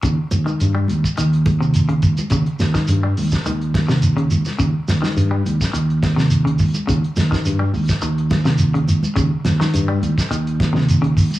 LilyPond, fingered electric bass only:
\new Staff \with { instrumentName = "Fingered electric bass" } { \clef bass \time 4/4 \key ees \mixolydian \tempo 4 = 105 ees,16 r16 ees,16 r16 g,8 ees,16 r16 ees,2 | ees,16 r16 ees,16 r16 g,8 ees,16 r16 ees,2 | ees,16 r16 ees,16 r16 g,8 ees,16 r16 ees,2 | ees,16 r16 ees,16 r16 g,8 ees,16 r16 ees,2 |
ees,16 r16 ees,16 r16 g,8 ees,16 r16 ees,2 | }